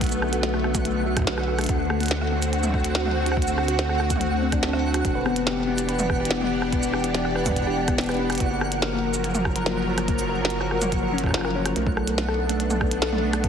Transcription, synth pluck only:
0.01 0.05 F#4 medium
0.12 0.21 A3 medium
0.33 0.39 F#4 medium
0.43 0.50 A3 medium
0.54 0.60 A3 loud
0.75 0.78 F#4 medium
0.85 0.95 A3 medium
1.06 1.12 F#4 medium
1.17 1.23 A3 medium
1.27 1.33 A3 loud
1.48 1.52 F#4 medium
1.58 1.68 A3 medium
1.79 1.86 F#4 medium
1.90 1.96 A3 medium
2.00 2.07 A3 loud
2.21 2.25 F#4 medium
2.32 2.42 A3 medium
2.53 2.59 F#4 medium
2.63 2.70 A3 medium
2.74 2.80 A3 loud
2.95 2.99 F#4 medium
3.05 3.15 A3 medium
3.26 3.33 F#4 medium
3.37 3.43 A3 medium
3.47 3.54 A3 loud
3.68 3.72 F#4 medium
3.79 3.88 A3 medium
4.00 4.06 F#4 medium
4.10 4.17 A3 medium
4.21 4.27 A3 loud
4.42 4.48 C4 medium
4.52 4.56 D4 loud
4.63 4.69 A4 medium
4.73 4.77 C4 medium
4.84 4.90 A3 medium
4.94 5.04 F#4 loud
5.15 5.25 B4 medium
5.26 5.35 B3 medium
5.47 5.53 G4 medium
5.57 5.64 B3 medium
5.68 5.74 B3 loud
5.89 5.98 B4 medium
5.99 6.09 B3 medium
6.20 6.26 G4 medium
6.31 6.37 B3 medium
6.41 6.47 B3 loud
6.62 6.72 B4 medium
6.72 6.82 B3 medium
6.93 7.00 G4 medium
7.04 7.10 B3 medium
7.14 7.21 B3 loud
7.35 7.45 B4 medium
7.46 7.55 B3 medium
7.67 7.73 G4 medium
7.77 7.84 B3 medium
7.88 7.94 B3 loud
8.09 8.18 B4 medium
8.19 8.29 B3 medium
8.40 8.47 F#4 medium
8.51 8.57 A#3 medium
8.61 8.68 A#3 loud
8.82 8.92 A#4 medium
8.93 9.02 A#3 medium
9.14 9.20 F#4 medium
9.24 9.31 A#3 medium
9.35 9.41 A#3 loud
9.56 9.65 A#4 medium
9.66 9.76 A#3 medium
9.87 9.94 F#4 medium
9.98 10.04 A#3 medium
10.08 10.15 A#3 loud
10.29 10.39 A#4 medium
10.40 10.49 A#3 medium
10.61 10.67 F#4 medium
10.71 10.77 A#3 medium
10.82 10.88 A#3 loud
11.03 11.12 A#4 medium
11.13 11.17 C#4 medium
11.24 11.30 A#3 medium
11.34 11.40 F4 medium
11.45 11.48 A#4 medium
11.55 11.59 C#4 medium
11.76 11.82 A3 loud
11.97 12.07 A4 medium
12.07 12.17 A3 medium
12.28 12.32 A4 loud
12.39 12.45 A3 medium
12.49 12.56 A3 loud
12.70 12.80 A4 medium
12.81 12.90 A3 medium
13.02 13.06 A4 loud
13.12 13.19 A3 medium
13.23 13.29 A3 loud
13.44 13.49 A4 medium

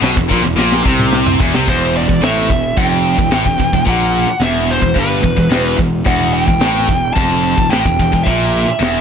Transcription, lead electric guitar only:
1.69 1.94 C5 medium
1.97 2.24 D5 medium
2.24 2.80 E5 medium
2.78 3.83 G5 loud
3.89 4.44 F#5 medium
4.43 4.71 E5 medium
4.71 4.98 C5 medium
5.00 5.76 B4 medium
6.07 6.33 F#5 medium
6.34 7.13 G5 loud
7.14 7.70 A5 loud
7.71 8.27 G5 loud
8.23 9.01 E5 medium

